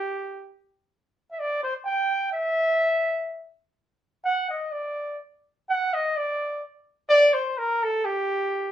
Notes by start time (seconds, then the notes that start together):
Already playing: G4
1.31 E5
1.39 D5
1.63 C5
1.85 G5
2.32 E5
4.25 F#5
4.50 D#5
4.72 D5
5.69 F#5
5.94 D#5
6.16 D5
7.10 D5
7.34 C5
7.58 A#4
7.83 A4
8.05 G4